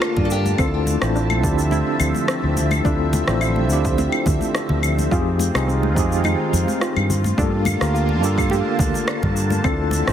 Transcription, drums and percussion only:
0.02 cross-stick medium
0.02 claves medium
0.02 shaker soft
0.17 kick medium
0.17 low conga medium
0.31 shaker medium
0.46 high conga medium
0.46 shaker soft
0.58 kick loud
0.58 claves medium
0.58 shaker soft
0.87 high conga medium
0.87 shaker medium
1.02 cross-stick medium
1.02 shaker soft
1.16 shaker soft
1.30 high conga medium
1.30 claves medium
1.44 kick loud
1.44 shaker medium
1.59 shaker soft
1.71 high conga medium
1.71 shaker soft
2.00 claves medium
2.00 shaker medium
2.14 high conga medium
2.14 shaker soft
2.28 cross-stick medium
2.28 shaker soft
2.57 low conga medium
2.57 shaker medium
2.71 high conga medium
2.71 claves medium
2.71 shaker soft
2.85 kick loud
2.85 shaker soft
3.13 high conga loud
3.13 low conga medium
3.13 shaker medium
3.28 cross-stick medium
3.28 shaker soft
3.41 claves medium
3.41 shaker soft
3.56 high conga medium
3.70 shaker medium
3.85 kick loud
3.85 shaker soft
3.98 high conga medium
3.98 shaker soft
4.12 claves medium
4.26 kick loud
4.26 low conga medium
4.26 shaker medium
4.41 high conga medium
4.41 shaker soft
4.55 cross-stick medium
4.55 shaker soft
4.69 low conga medium
4.83 claves medium
4.83 shaker medium
4.99 high conga medium
4.99 shaker soft
5.11 kick loud
5.11 shaker soft
5.39 high conga loud
5.39 shaker medium
5.55 cross-stick medium
5.55 claves medium
5.55 shaker soft
5.69 shaker soft
5.83 high conga medium
5.96 kick loud
5.96 shaker medium
6.12 shaker soft
6.24 high conga medium
6.24 claves medium
6.24 shaker soft
6.54 shaker medium
6.68 high conga medium
6.68 shaker soft
6.81 cross-stick medium
6.81 shaker soft
6.96 claves medium
7.10 low conga medium
7.10 shaker medium
7.24 high conga medium
7.24 shaker soft
7.38 kick loud
7.38 shaker soft
7.65 high conga loud
7.65 low conga medium
7.65 claves medium
7.65 shaker medium
7.81 cross-stick medium
7.81 shaker soft
7.95 shaker soft
8.09 high conga medium
8.24 shaker medium
8.38 kick loud
8.38 claves medium
8.38 shaker soft
8.50 high conga loud
8.50 shaker soft
8.79 kick loud
8.79 low conga medium
8.79 shaker medium
8.94 high conga medium
8.94 shaker soft
9.08 cross-stick medium
9.08 claves medium
9.08 shaker soft
9.23 kick medium
9.23 low conga medium
9.37 shaker medium
9.50 high conga medium
9.50 shaker soft
9.64 kick loud
9.64 claves medium
9.64 shaker soft
9.91 high conga medium
9.91 shaker medium
10.08 cross-stick medium
10.08 shaker soft

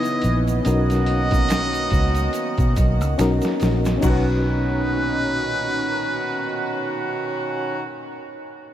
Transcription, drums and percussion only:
0.03 closed hi-hat soft
0.03 shaker medium
0.22 closed hi-hat medium
0.22 shaker medium
0.47 closed hi-hat soft
0.47 shaker medium
0.65 closed hi-hat medium
0.65 shaker medium
0.90 snare soft
0.90 closed hi-hat medium
0.90 shaker soft
1.06 closed hi-hat medium
1.31 kick medium
1.31 closed hi-hat medium
1.31 shaker medium
1.49 finger snap medium
1.49 snare loud
1.49 closed hi-hat medium
1.49 shaker medium
1.73 closed hi-hat soft
1.73 shaker soft
1.90 kick medium
1.90 closed hi-hat medium
1.90 shaker soft
2.14 closed hi-hat soft
2.14 shaker medium
2.33 closed hi-hat medium
2.33 shaker medium
2.58 kick loud
2.58 closed hi-hat soft
2.58 shaker soft
2.76 kick medium
2.76 closed hi-hat medium
2.76 shaker medium
3.01 closed hi-hat medium
3.01 shaker medium
3.19 finger snap medium
3.19 snare medium
3.19 closed hi-hat medium
3.19 shaker medium
3.42 snare medium
3.42 closed hi-hat soft
3.42 shaker medium
3.60 snare loud
3.60 open hi-hat medium
3.60 shaker medium
3.85 snare loud
3.85 closed hi-hat soft
3.85 shaker medium
4.02 kick loud
4.02 crash medium
4.02 shaker medium

